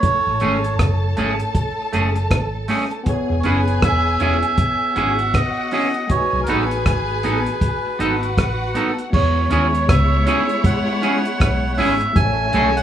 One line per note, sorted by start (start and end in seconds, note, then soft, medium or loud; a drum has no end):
0.00 3.01 A3 medium
0.00 3.02 E4 medium
0.00 3.02 A4 medium
0.00 0.75 C#5 loud
0.00 3.03 A5 medium
0.00 kick loud
0.00 closed hi-hat medium
0.05 3.03 A4 medium
0.05 3.04 C#5 medium
0.27 0.41 A1 medium
0.40 0.77 G#1 medium
0.40 0.56 A3 medium
0.40 0.57 C#4 medium
0.40 0.57 G#4 medium
0.40 closed hi-hat medium
0.64 closed hi-hat medium
0.79 1.15 F#1 medium
0.79 kick loud
0.79 cross-stick loud
0.79 closed hi-hat medium
1.17 1.39 G#1 medium
1.17 1.32 A3 medium
1.17 1.33 C#4 medium
1.17 1.33 G#4 loud
1.17 closed hi-hat medium
1.40 muted clean electric guitar stroke soft
1.40 closed hi-hat medium
1.55 kick loud
1.55 closed hi-hat medium
1.93 2.29 F#1 medium
1.93 2.08 A3 medium
1.93 2.09 C#4 medium
1.93 2.09 G#4 medium
1.93 closed hi-hat medium
2.16 muted clean electric guitar stroke soft
2.16 closed hi-hat soft
2.31 2.67 G#1 medium
2.31 kick loud
2.31 cross-stick loud
2.31 closed hi-hat medium
2.68 2.84 A3 medium
2.68 2.84 C#4 medium
2.68 2.85 G#4 medium
2.68 open hi-hat medium
2.91 closed hi-hat soft
3.03 6.04 B3 medium
3.03 6.05 E4 medium
3.03 4.92 G#5 medium
3.03 kick loud
3.03 closed hi-hat medium
3.08 4.93 G#4 medium
3.08 6.06 G#4 medium
3.08 6.07 C#5 medium
3.30 3.44 E1 medium
3.40 3.45 C#5 medium
3.40 closed hi-hat medium
3.44 3.81 F#1 loud
3.44 3.59 C#4 medium
3.44 3.60 E4 medium
3.44 3.60 G#4 medium
3.44 3.80 B4 medium
3.68 closed hi-hat soft
3.82 4.19 E1 loud
3.82 4.20 E5 loud
3.82 kick loud
3.82 cross-stick loud
3.82 closed hi-hat medium
4.20 4.42 E1 medium
4.20 4.36 C#4 medium
4.20 4.36 E4 medium
4.20 4.37 G#4 medium
4.20 5.38 E5 loud
4.20 closed hi-hat medium
4.43 muted clean electric guitar stroke medium
4.43 closed hi-hat medium
4.58 kick loud
4.58 closed hi-hat medium
4.96 5.32 G#1 medium
4.96 5.11 C#4 medium
4.96 5.12 E4 medium
4.96 6.08 F#4 medium
4.96 5.12 G#4 medium
4.96 6.08 F#5 medium
4.96 closed hi-hat medium
5.19 muted clean electric guitar stroke soft
5.19 closed hi-hat medium
5.34 5.72 D#5 medium
5.34 kick loud
5.34 cross-stick loud
5.34 closed hi-hat medium
5.71 5.87 C#4 medium
5.71 5.88 E4 medium
5.71 5.88 G#4 medium
5.71 6.12 D#5 medium
5.71 open hi-hat medium
5.94 closed hi-hat soft
6.07 9.08 A3 medium
6.07 9.09 D#4 medium
6.07 9.10 F#4 medium
6.07 7.95 G#4 medium
6.07 6.40 C#5 medium
6.07 7.95 G#5 medium
6.07 kick loud
6.07 closed hi-hat medium
6.13 9.11 B4 medium
6.33 6.47 B1 medium
6.43 6.48 A#4 medium
6.43 closed hi-hat medium
6.48 6.84 A1 medium
6.48 6.63 B3 medium
6.48 6.64 D#4 medium
6.48 6.64 A4 loud
6.48 8.72 B4 medium
6.71 closed hi-hat medium
6.86 7.22 G#1 medium
6.86 kick loud
6.86 cross-stick loud
6.86 closed hi-hat medium
7.23 7.46 A1 medium
7.23 7.39 B3 medium
7.23 7.39 D#4 medium
7.23 7.40 A4 medium
7.23 closed hi-hat medium
7.46 muted clean electric guitar stroke soft
7.46 closed hi-hat soft
7.61 kick loud
7.61 closed hi-hat medium
7.99 8.35 G#1 medium
7.99 8.14 B3 medium
7.99 8.15 D#4 medium
7.99 9.11 F#4 medium
7.99 8.15 A4 medium
7.99 9.10 F#5 medium
7.99 closed hi-hat medium
8.22 muted clean electric guitar stroke soft
8.22 closed hi-hat soft
8.37 8.73 A1 medium
8.37 kick loud
8.37 cross-stick loud
8.37 closed hi-hat medium
8.75 8.90 B3 medium
8.75 8.91 D#4 medium
8.75 8.91 A4 medium
8.75 closed hi-hat medium
8.99 closed hi-hat soft
9.10 9.49 E2 loud
9.10 12.11 G#3 medium
9.10 12.10 B3 medium
9.10 12.11 E4 medium
9.10 12.12 G#4 medium
9.10 12.11 C#5 loud
9.10 9.50 C#5 medium
9.10 kick loud
9.10 crash loud
9.16 12.13 C#5 medium
9.50 9.87 D#2 medium
9.50 9.66 C#4 medium
9.50 9.67 E4 medium
9.50 9.67 G#4 medium
9.50 9.90 C#5 medium
9.50 closed hi-hat medium
9.75 closed hi-hat medium
9.89 10.25 C#2 loud
9.89 10.25 E5 medium
9.89 kick loud
9.89 cross-stick loud
9.89 closed hi-hat loud
10.26 10.42 C#4 medium
10.26 10.42 E4 medium
10.26 10.43 G#4 medium
10.26 10.66 E5 medium
10.26 closed hi-hat medium
10.49 closed hi-hat medium
10.64 11.72 F#5 loud
10.64 kick loud
10.64 closed hi-hat medium
11.02 11.17 C#4 medium
11.02 11.18 E4 medium
11.02 11.18 G#4 medium
11.02 closed hi-hat medium
11.25 closed hi-hat medium
11.40 11.76 B1 medium
11.40 kick loud
11.40 cross-stick loud
11.40 closed hi-hat loud
11.74 12.17 E5 loud
11.74 11.79 F#5 medium
11.78 12.00 G#1 loud
11.78 11.93 C#4 medium
11.78 11.94 E4 medium
11.78 11.94 G#4 medium
11.78 open hi-hat medium
12.01 muted clean electric guitar stroke soft
12.01 closed hi-hat soft
12.13 12.52 A1 loud
12.13 12.83 A3 medium
12.13 12.83 C#4 medium
12.13 12.83 E4 medium
12.13 12.83 G#4 medium
12.13 12.83 A4 medium
12.13 12.83 E5 loud
12.13 12.78 G#5 loud
12.13 kick loud
12.13 closed hi-hat medium
12.19 12.25 C5 medium
12.25 12.83 C#5 medium
12.53 12.83 B1 loud
12.53 12.69 A3 medium
12.53 12.69 C#4 loud
12.53 12.70 G#4 loud
12.53 closed hi-hat medium
12.77 12.83 F#5 medium
12.77 closed hi-hat medium